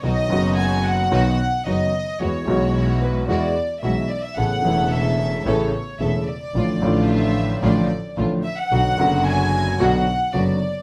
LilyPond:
<<
  \new Staff \with { instrumentName = "Violin section" } { \time 4/4 \key b \dorian \tempo 4 = 111 dis''4 gis''8 fis''4. dis''4 | cis''4. b'8 d''4 e''8 d''16 e''16 | fis''4 e''4 cis''4 e''8 d''8~ | d''4 e''4 d''4 r8 e''16 fis''16~ |
fis''4 gis''4 fis''4 d''4 | }
  \new Staff \with { instrumentName = "String section" } { \time 4/4 \key b \dorian <b dis' fis'>8 <b dis' fis'>4. <b dis' fis'>8 r8 <b dis' fis'>8 r8 | <gis e' fis'>8 <gis e' fis'>4. <gis e' fis'>8 r8 <gis e' fis'>8 r8 | <b cis' a'>8 <b cis' a'>4. <b cis' a'>8 r8 <b cis' a'>8 r8 | <a d' f'>8 <a d' f'>4. <a d' f'>8 r8 <a d' f'>8 r8 |
<b d' fis'>8 <b d' fis'>4. <b d' fis'>8 r8 <b d' fis'>8 r8 | }
  \new Staff \with { instrumentName = "Grand piano" } { \clef bass \time 4/4 \key b \dorian <b,, b, dis fis b fis'>8 <fis,, fis, dis fis b fis'>4. <b,, b, dis fis b fis'>8 r8 <fis,, fis, dis fis b fis'>8 r8 | <e, e gis b fis'>8 <b,, b, e gis b fis'>4. <e, e gis b fis'>8 r8 <b,, b, e gis b fis'>8 r8 | <a,, a, cis a b e'>8 <e,, e, cis a b e'>4. <a,, a, cis a b e'>8 r8 <e,, e, cis a b e'>8 r8 | <a,, a, d f a f'>8 <a,, a, d f a f'>4. <a,, a, d f a f'>8 r8 <a,, a, d f a f'>8 r8 |
<b,, b, d fis b fis'>8 <fis,, fis, d fis b fis'>4. <b,, b, d fis b fis'>8 r8 <fis,, fis, d fis b fis'>8 r8 | }
  \new Staff \with { instrumentName = "Double bass" } { \clef bass \time 4/4 \key b \dorian b,,8 fis,,4. b,,8 r8 fis,,8 r8 | e,8 b,,4. e,8 r8 b,,8 r8 | a,,8 e,,4. a,,8 r8 e,,8 r8 | a,,8 a,,4. a,,8 r8 a,,8 r8 |
b,,8 fis,,4. b,,8 r8 fis,,8 r8 | }
>>